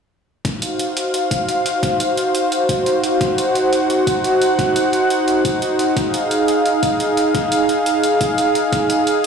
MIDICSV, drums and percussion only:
0, 0, Header, 1, 2, 480
1, 0, Start_track
1, 0, Tempo, 344828
1, 626, Time_signature, 4, 2, 24, 8
1, 12897, End_track
2, 0, Start_track
2, 0, Title_t, "Drums"
2, 624, Note_on_c, 9, 36, 105
2, 625, Note_on_c, 9, 42, 71
2, 763, Note_off_c, 9, 36, 0
2, 764, Note_off_c, 9, 42, 0
2, 864, Note_on_c, 9, 42, 85
2, 1003, Note_off_c, 9, 42, 0
2, 1106, Note_on_c, 9, 42, 74
2, 1245, Note_off_c, 9, 42, 0
2, 1346, Note_on_c, 9, 42, 88
2, 1485, Note_off_c, 9, 42, 0
2, 1586, Note_on_c, 9, 42, 74
2, 1726, Note_off_c, 9, 42, 0
2, 1825, Note_on_c, 9, 36, 95
2, 1826, Note_on_c, 9, 42, 88
2, 1965, Note_off_c, 9, 36, 0
2, 1966, Note_off_c, 9, 42, 0
2, 2068, Note_on_c, 9, 42, 72
2, 2207, Note_off_c, 9, 42, 0
2, 2308, Note_on_c, 9, 42, 88
2, 2447, Note_off_c, 9, 42, 0
2, 2545, Note_on_c, 9, 36, 106
2, 2548, Note_on_c, 9, 42, 74
2, 2685, Note_off_c, 9, 36, 0
2, 2687, Note_off_c, 9, 42, 0
2, 2785, Note_on_c, 9, 42, 83
2, 2924, Note_off_c, 9, 42, 0
2, 3027, Note_on_c, 9, 42, 72
2, 3167, Note_off_c, 9, 42, 0
2, 3266, Note_on_c, 9, 42, 89
2, 3405, Note_off_c, 9, 42, 0
2, 3508, Note_on_c, 9, 42, 71
2, 3647, Note_off_c, 9, 42, 0
2, 3745, Note_on_c, 9, 36, 99
2, 3746, Note_on_c, 9, 42, 84
2, 3884, Note_off_c, 9, 36, 0
2, 3886, Note_off_c, 9, 42, 0
2, 3986, Note_on_c, 9, 42, 70
2, 4125, Note_off_c, 9, 42, 0
2, 4226, Note_on_c, 9, 42, 86
2, 4365, Note_off_c, 9, 42, 0
2, 4465, Note_on_c, 9, 36, 112
2, 4466, Note_on_c, 9, 42, 69
2, 4605, Note_off_c, 9, 36, 0
2, 4605, Note_off_c, 9, 42, 0
2, 4707, Note_on_c, 9, 42, 78
2, 4847, Note_off_c, 9, 42, 0
2, 4948, Note_on_c, 9, 42, 71
2, 5087, Note_off_c, 9, 42, 0
2, 5187, Note_on_c, 9, 42, 86
2, 5326, Note_off_c, 9, 42, 0
2, 5428, Note_on_c, 9, 42, 71
2, 5567, Note_off_c, 9, 42, 0
2, 5666, Note_on_c, 9, 36, 102
2, 5668, Note_on_c, 9, 42, 83
2, 5805, Note_off_c, 9, 36, 0
2, 5807, Note_off_c, 9, 42, 0
2, 5908, Note_on_c, 9, 42, 70
2, 6047, Note_off_c, 9, 42, 0
2, 6147, Note_on_c, 9, 42, 84
2, 6286, Note_off_c, 9, 42, 0
2, 6385, Note_on_c, 9, 36, 110
2, 6387, Note_on_c, 9, 42, 69
2, 6524, Note_off_c, 9, 36, 0
2, 6527, Note_off_c, 9, 42, 0
2, 6625, Note_on_c, 9, 42, 81
2, 6764, Note_off_c, 9, 42, 0
2, 6864, Note_on_c, 9, 42, 67
2, 7003, Note_off_c, 9, 42, 0
2, 7105, Note_on_c, 9, 42, 82
2, 7244, Note_off_c, 9, 42, 0
2, 7346, Note_on_c, 9, 42, 67
2, 7485, Note_off_c, 9, 42, 0
2, 7584, Note_on_c, 9, 36, 101
2, 7585, Note_on_c, 9, 42, 84
2, 7723, Note_off_c, 9, 36, 0
2, 7724, Note_off_c, 9, 42, 0
2, 7824, Note_on_c, 9, 42, 66
2, 7963, Note_off_c, 9, 42, 0
2, 8063, Note_on_c, 9, 42, 80
2, 8202, Note_off_c, 9, 42, 0
2, 8304, Note_on_c, 9, 36, 107
2, 8305, Note_on_c, 9, 42, 66
2, 8443, Note_off_c, 9, 36, 0
2, 8444, Note_off_c, 9, 42, 0
2, 8545, Note_on_c, 9, 42, 80
2, 8684, Note_off_c, 9, 42, 0
2, 8784, Note_on_c, 9, 42, 73
2, 8924, Note_off_c, 9, 42, 0
2, 9023, Note_on_c, 9, 42, 83
2, 9162, Note_off_c, 9, 42, 0
2, 9265, Note_on_c, 9, 42, 70
2, 9404, Note_off_c, 9, 42, 0
2, 9504, Note_on_c, 9, 42, 81
2, 9505, Note_on_c, 9, 36, 97
2, 9643, Note_off_c, 9, 42, 0
2, 9644, Note_off_c, 9, 36, 0
2, 9745, Note_on_c, 9, 42, 67
2, 9884, Note_off_c, 9, 42, 0
2, 9986, Note_on_c, 9, 42, 83
2, 10125, Note_off_c, 9, 42, 0
2, 10225, Note_on_c, 9, 36, 99
2, 10225, Note_on_c, 9, 42, 71
2, 10364, Note_off_c, 9, 36, 0
2, 10364, Note_off_c, 9, 42, 0
2, 10465, Note_on_c, 9, 42, 83
2, 10604, Note_off_c, 9, 42, 0
2, 10706, Note_on_c, 9, 42, 75
2, 10845, Note_off_c, 9, 42, 0
2, 10944, Note_on_c, 9, 42, 90
2, 11083, Note_off_c, 9, 42, 0
2, 11184, Note_on_c, 9, 42, 77
2, 11324, Note_off_c, 9, 42, 0
2, 11424, Note_on_c, 9, 42, 88
2, 11425, Note_on_c, 9, 36, 96
2, 11564, Note_off_c, 9, 36, 0
2, 11564, Note_off_c, 9, 42, 0
2, 11665, Note_on_c, 9, 42, 73
2, 11805, Note_off_c, 9, 42, 0
2, 11906, Note_on_c, 9, 42, 83
2, 12045, Note_off_c, 9, 42, 0
2, 12145, Note_on_c, 9, 36, 105
2, 12146, Note_on_c, 9, 42, 74
2, 12284, Note_off_c, 9, 36, 0
2, 12285, Note_off_c, 9, 42, 0
2, 12385, Note_on_c, 9, 42, 87
2, 12524, Note_off_c, 9, 42, 0
2, 12625, Note_on_c, 9, 42, 74
2, 12764, Note_off_c, 9, 42, 0
2, 12897, End_track
0, 0, End_of_file